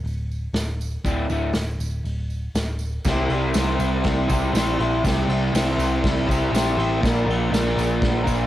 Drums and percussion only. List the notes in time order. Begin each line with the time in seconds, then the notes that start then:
0.04 open hi-hat, tambourine
0.32 tambourine
0.53 snare, open hi-hat, tambourine
0.81 tambourine
1.04 kick, open hi-hat, tambourine
1.30 tambourine
1.52 snare, open hi-hat, tambourine
1.80 tambourine
2.05 open hi-hat, tambourine
2.30 tambourine
2.54 snare, open hi-hat, tambourine
2.79 tambourine
3.04 kick, snare, crash, tambourine
3.29 ride
3.54 snare, ride, tambourine
3.79 ride, tambourine
4.04 kick, snare, ride, tambourine
4.29 kick, ride, tambourine
4.55 snare, ride, tambourine
4.80 ride
5.04 kick, snare, ride, tambourine
5.29 ride
5.55 snare, ride, tambourine
5.79 ride, tambourine
6.04 kick, snare, ride, tambourine
6.29 kick, ride, tambourine
6.55 snare, ride, tambourine
6.79 ride
7.03 kick, snare, tambourine, crash
7.30 ride
7.53 snare, ride, tambourine
7.78 ride, tambourine
8.02 kick, snare, ride, tambourine
8.27 kick, ride, tambourine